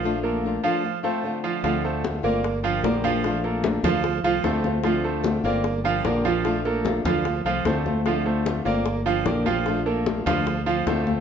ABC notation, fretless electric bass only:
X:1
M:4/4
L:1/8
Q:1/4=150
K:Dm
V:1 name="Fretless electric bass" clef=bass
B,,,3 z4 z | D,,3 G,,,3 B,,,2- | B,,,3 D,,2 C,, D,,2- | D,,3 G,,,3 B,,,2- |
B,,,3 D,,2 C,, D,,2- | D,,3 G,,,3 B,,,2- | B,,,3 D,,3 D,,2 |]